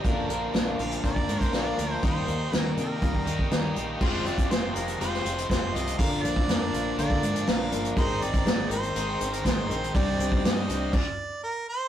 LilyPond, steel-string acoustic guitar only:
\new Staff \with { instrumentName = "Steel-string acoustic guitar" } { \time 4/4 \key f \dorian \tempo 4 = 121 <bes, d f bes d' bes'>8 <f bes d' bes'>8 <bes, d f bes d' bes'>8 <f bes d' bes'>8 <f bes d' bes'>8 <f bes d' bes'>8 <bes, d f bes d' bes'>8 <f bes d' bes'>8 | <ees g bes ees' bes'>8 <bes ees' bes'>8 <ees g bes ees' bes'>8 <bes ees' bes'>8 <g bes ees' bes'>8 <bes ees' bes'>8 <ees g bes ees' bes'>8 <bes ees' bes'>8 | <f aes c' f' g'>8 <c' f' g'>8 <aes c' f' g'>8 <c' f' g'>8 <f aes c' f' g'>8 <c' f' g'>8 <aes c' f' g'>8 <c' f' g'>8 | <bes, d f bes d' bes'>8 <f bes d' bes'>8 <f bes d' bes'>8 <f bes d' bes'>8 <bes, d f bes d' bes'>8 <f bes d' bes'>8 <f bes d' bes'>8 <f bes d' bes'>8 |
<aes c' ees' bes'>8 <c' ees' bes'>8 <aes c' ees' bes'>8 <c' ees' bes'>8 <aes c' ees' bes'>8 <c' ees' bes'>8 <aes c' ees' bes'>8 <c' ees' bes'>8 | <c ees g c' d' g'>8 <g c' d' g'>8 <g c' d' g'>8 <g c' d' g'>8 r2 | }